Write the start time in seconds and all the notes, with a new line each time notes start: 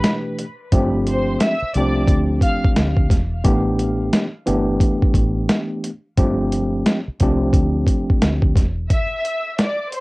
Already playing: B2 E3 A3 D4 G4
0.04 snare, closed hi-hat
0.39 closed hi-hat
0.72 G1 F3 A3 C4 D4 G4, kick, closed hi-hat
1.07 C5 C6, closed hi-hat
1.40 E5 E6, snare, closed hi-hat
1.62 muted fingered electric bass stroke
1.74 C2 F3 A3 C4 D4 G4 D5 D6, closed hi-hat
2.08 D2, kick, closed hi-hat
2.41 F5 F6, kick, closed hi-hat
2.65 kick
2.76 D2, snare, closed hi-hat
2.97 kick
3.10 E1, kick, snare, closed hi-hat
3.44 A1 E3 A3 B3 D4 G4, kick, closed hi-hat
3.79 closed hi-hat
4.13 snare, closed hi-hat
4.46 G1 E3 A3 B3 D4 G4, closed hi-hat
4.80 kick, closed hi-hat
5.02 kick
5.14 A1, kick, closed hi-hat
5.49 snare, closed hi-hat
5.84 closed hi-hat
6.17 G1 F3 A3 C4 D4 G4, kick, closed hi-hat
6.52 closed hi-hat
6.86 snare, closed hi-hat
7.08 muted fingered electric bass stroke
7.20 C2 F3 A3 C4 D4 G4, kick, closed hi-hat
7.53 D2, kick, closed hi-hat
7.87 kick, closed hi-hat
8.10 kick
8.22 D2, snare, closed hi-hat
8.42 kick
8.56 E1, kick, snare, closed hi-hat
8.90 E5 E6, kick, closed hi-hat
9.25 closed hi-hat
9.58 D5 D6, snare, closed hi-hat
9.92 C5 C6, closed hi-hat